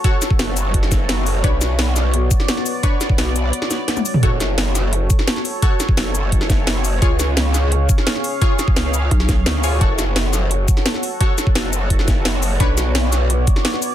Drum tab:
HH |x-x-x-x-x-x-x-o-|x-x-x-x-x-x-x-o-|x-x-x-x-x-x-x-o-|x-x-x-x-x-x-x-o-|
SH |--x---x---x---x-|--x---x---x---x-|--x---x---x--xx-|--x---x---x---x-|
SD |--o-o----oo-o---|--o-o-o----ooo--|--o-o----oo-o---|--o-o-o----ooo--|
T1 |----------------|----------------|-------------o--|----------------|
T2 |----------------|----------------|---------------o|----------------|
BD |o--o----o-o-----|o---------o-----|o--o------------|o---------o-----|

HH |x-x-x-x-x-x-x-o-|x-x-x-x-x-x-x-o-|x-x-x-x-x-x-x-o-|x-x-x-x-x-x-x-o-|
SH |--x---x---x---x-|--x---x---x---x-|--x---x---x---x-|--x---x---x---x-|
SD |--o-o----oo-o---|--o-o-o----ooo--|--o-o----oo-o---|--o-o-o----ooo--|
T1 |----------------|----------------|----------------|----------------|
T2 |----------------|----------------|----------------|----------------|
BD |o--o----o-o-----|o---------o-----|o--o----o-o-----|o---------o-----|

HH |x-x-x-x-x-x-x-o-|x-x-x-x-x-x-x-o-|
SH |--x---x---x---x-|--x---x---x---x-|
SD |--o-o----oo-o---|--o-o-o----ooo--|
T1 |----------------|----------------|
T2 |----------------|----------------|
BD |o--o----o-o-----|o---------o-----|